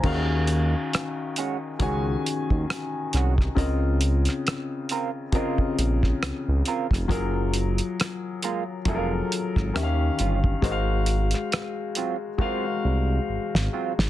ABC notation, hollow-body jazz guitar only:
X:1
M:4/4
L:1/16
Q:"Swing 16ths" 1/4=68
K:Ebdor
V:1 name="Hollow-body jazz guitar"
z6 [A,DG]2 [A,DG] z4 z [A,DG]2 | z6 [CFB]2 [CFB] z4 z [CFB]2 | z6 [A,B,F]2 [A,B,F] z4 z [=G,DF]2 | z6 [G,CF]2 [G,CF] z4 z [G,CF]2 |]